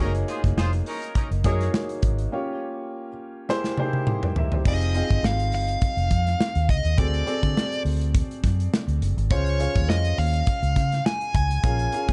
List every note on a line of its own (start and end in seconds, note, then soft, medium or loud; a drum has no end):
0.00 0.22 F#1 loud
0.00 0.12 C#4 loud
0.00 0.11 D#4 loud
0.00 0.74 D#4 medium
0.00 0.74 F#4 medium
0.00 0.75 G#4 medium
0.00 0.11 A#4 loud
0.00 0.75 C#5 medium
0.04 0.77 A#3 medium
0.15 closed hi-hat medium
0.28 0.41 F4 medium
0.28 0.41 G#4 medium
0.28 0.41 C5 medium
0.28 closed hi-hat medium
0.44 0.55 F#1 medium
0.44 kick medium
0.44 snare soft
0.44 closed hi-hat medium
0.57 0.80 F1 loud
0.57 0.70 F4 loud
0.57 0.70 G#4 loud
0.57 0.70 C5 loud
0.57 snare medium
0.73 closed hi-hat soft
0.86 1.10 C#4 loud
0.86 1.10 D#4 loud
0.86 1.10 A#4 loud
0.86 open hi-hat medium
1.02 closed hi-hat medium
1.15 1.28 C#4 medium
1.15 1.28 D#4 medium
1.15 1.28 A#4 medium
1.15 kick medium
1.15 closed hi-hat medium
1.31 1.42 F#1 medium
1.31 closed hi-hat medium
1.44 1.68 F#2 medium
1.44 2.01 A#3 loud
1.44 2.01 D#4 medium
1.44 2.01 F#4 medium
1.44 1.68 G#4 loud
1.44 2.01 G#4 medium
1.44 1.68 A#4 medium
1.44 1.68 C#5 loud
1.44 2.01 C#5 medium
1.44 kick medium
1.44 snare soft
1.44 closed hi-hat medium
1.61 snare soft
1.61 closed hi-hat soft
1.74 snare loud
1.89 closed hi-hat medium
2.02 2.26 G#1 medium
2.02 kick medium
2.02 closed hi-hat medium
2.18 closed hi-hat medium
2.32 3.08 A#3 medium
2.32 3.08 C#4 medium
2.32 3.08 F4 medium
2.32 3.08 G4 medium
2.32 3.08 C#5 loud
3.49 3.72 A#3 medium
3.49 3.72 E4 medium
3.49 3.73 G4 medium
3.49 3.73 G#4 medium
3.49 3.73 C5 loud
3.49 snare medium
3.64 snare medium
3.77 4.34 A#3 medium
3.77 3.85 D#4 medium
3.77 4.07 G4 medium
3.77 4.07 G#4 medium
3.77 4.08 C5 loud
3.77 high tom medium
3.85 4.37 E4 medium
3.93 high tom medium
4.07 mid tom medium
4.23 4.36 C5 medium
4.23 4.36 G5 medium
4.23 mid tom medium
4.36 4.52 A#4 medium
4.36 4.52 E5 medium
4.36 floor tom loud
4.52 4.81 G4 medium
4.52 4.80 C5 medium
4.52 floor tom medium
4.65 5.01 F1 loud
4.65 4.85 C4 medium
4.65 4.85 D#4 medium
4.65 4.85 F4 medium
4.65 4.85 G#4 medium
4.65 4.86 D#5 medium
4.65 5.26 D#5 loud
4.65 kick loud
4.65 crash loud
4.81 closed hi-hat medium
4.95 5.70 C4 medium
4.95 5.70 D#4 medium
4.95 5.70 F4 medium
4.95 5.70 G#4 medium
4.95 5.02 D#5 medium
4.95 closed hi-hat medium
5.03 5.74 F5 medium
5.11 5.21 G1 loud
5.11 kick medium
5.11 closed hi-hat soft
5.23 5.52 G#1 medium
5.23 5.53 F5 loud
5.23 snare loud
5.40 closed hi-hat soft
5.52 5.75 G1 loud
5.52 6.73 F5 loud
5.52 open hi-hat medium
5.68 closed hi-hat medium
5.81 kick loud
5.81 closed hi-hat medium
5.97 6.08 F1 medium
5.97 closed hi-hat soft
6.10 6.34 F2 loud
6.10 kick medium
6.10 closed hi-hat medium
6.27 snare soft
6.27 closed hi-hat medium
6.41 snare loud
6.55 6.69 D#2 loud
6.55 closed hi-hat soft
6.69 6.81 C#2 medium
6.69 6.98 D#5 medium
6.69 kick medium
6.69 closed hi-hat medium
6.85 6.95 D#2 medium
6.85 closed hi-hat medium
6.97 7.21 D2 loud
6.97 7.17 C4 medium
6.97 7.17 F#4 medium
6.97 7.17 G#4 medium
6.97 7.18 A4 medium
6.97 7.82 D5 medium
6.97 7.18 D5 medium
6.97 kick loud
6.97 closed hi-hat medium
7.14 closed hi-hat soft
7.26 8.02 C4 medium
7.26 8.02 F#4 medium
7.26 8.02 G#4 medium
7.26 8.03 A4 medium
7.26 8.03 D5 medium
7.26 closed hi-hat medium
7.43 7.54 D3 loud
7.43 kick medium
7.43 closed hi-hat medium
7.57 snare loud
7.72 closed hi-hat soft
7.85 8.21 D2 loud
7.85 open hi-hat medium
8.01 closed hi-hat medium
8.15 kick loud
8.15 closed hi-hat medium
8.31 closed hi-hat medium
8.43 8.66 F#2 medium
8.43 kick medium
8.43 snare soft
8.43 closed hi-hat medium
8.60 closed hi-hat soft
8.74 snare loud
8.88 8.99 D2 medium
8.88 closed hi-hat medium
9.01 9.14 F#1 medium
9.01 closed hi-hat medium
9.17 9.28 G#1 medium
9.17 closed hi-hat medium
9.30 9.66 C#2 loud
9.30 9.50 C#4 medium
9.30 9.50 F4 medium
9.30 9.51 G#4 medium
9.30 9.51 C5 medium
9.30 9.89 C#5 medium
9.30 9.51 F5 medium
9.30 kick loud
9.30 closed hi-hat medium
9.46 closed hi-hat medium
9.59 10.35 C#4 medium
9.59 10.35 F4 medium
9.59 10.36 G#4 medium
9.59 10.36 C5 medium
9.59 10.36 F5 medium
9.59 closed hi-hat medium
9.75 9.89 D#2 loud
9.75 kick medium
9.75 closed hi-hat medium
9.89 10.12 F2 loud
9.89 10.19 D#5 medium
9.89 snare loud
10.05 closed hi-hat medium
10.18 10.41 D#2 loud
10.18 11.06 F5 loud
10.18 open hi-hat medium
10.34 closed hi-hat medium
10.46 kick loud
10.46 closed hi-hat medium
10.63 10.73 C#2 loud
10.63 closed hi-hat medium
10.76 10.99 C#3 loud
10.76 kick medium
10.76 snare soft
10.76 closed hi-hat medium
10.92 snare soft
10.92 closed hi-hat medium
11.06 11.33 G#5 loud
11.06 snare loud
11.21 closed hi-hat soft
11.34 11.58 C#2 medium
11.34 12.13 G#5 medium
11.34 kick loud
11.34 closed hi-hat medium
11.51 closed hi-hat medium
11.63 11.87 A#1 medium
11.63 11.83 C#4 medium
11.63 11.83 F4 medium
11.63 11.83 G#4 medium
11.63 11.83 A#4 medium
11.63 11.84 F5 medium
11.63 kick loud
11.63 closed hi-hat medium
11.79 closed hi-hat soft
11.92 12.13 C#4 medium
11.92 12.13 F4 medium
11.92 12.13 G#4 medium
11.92 12.13 A#4 medium
11.92 12.13 F5 medium
11.92 closed hi-hat medium
12.08 12.13 A#2 medium
12.08 kick medium
12.08 closed hi-hat medium